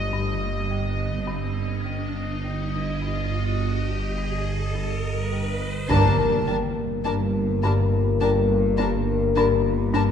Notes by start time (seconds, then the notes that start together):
Already playing: G1 G2 D#5, riser
0.13 G2
0.71 G3
1.27 G1 G2 D#5
1.85 G3
2.45 G3
3.02 G2
3.60 G3
4.17 G2
4.75 G2
5.32 G3
5.89 G1 G2 A#3 D4 A#4 A5, taiko, impact
6.46 G3 D4 A#4 A5
7.05 G1 G2 D4 A#4 A5
7.63 G2 D4 A#4 A5
8.21 G1 G2 G3 D4 A#4 A5
8.78 G2 D4 A#4 A5
9.35 G1 G2 D4 A#4 A5
9.93 G2 D4 A#4 A5